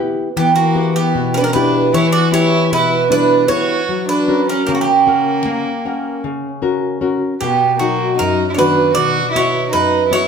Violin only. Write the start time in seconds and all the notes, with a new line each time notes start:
0.40 B3
0.58 A#3
0.97 B3
1.36 C#4
1.41 D4
1.48 C#4
1.56 D4
1.96 E4
2.15 F#4
2.34 E4
2.73 E4
3.12 D4
3.50 F#4
4.09 D4
4.48 C#4
4.66 A#3
4.74 A#3
4.80 A#3
7.42 B3
7.78 A#3
8.18 D#4
8.50 E4
8.55 D4
8.94 F#4
9.32 E4
9.70 D#4
10.09 E4